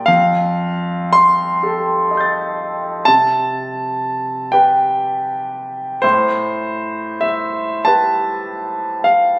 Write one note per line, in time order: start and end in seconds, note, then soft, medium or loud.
0.00 0.10 A#4 soft
0.00 0.10 D5 medium
0.06 3.04 F2 medium
0.06 1.14 F5 medium
1.13 2.13 C6 medium
1.63 3.04 G4 soft
1.63 3.04 A4 soft
2.11 3.04 D#5 soft
2.11 3.06 C6 soft
2.17 3.07 G6 soft
2.17 3.09 A6 soft
3.05 5.99 C3 medium
3.05 4.53 A5 loud
4.52 5.98 G4 soft
4.52 5.99 B4 soft
4.52 6.02 G5 medium
6.02 9.39 A2 medium
6.02 7.22 C5 medium
7.21 7.85 E5 medium
7.85 9.39 G4 soft
7.85 9.39 B4 soft
7.85 9.05 A5 medium
9.04 9.39 F5 medium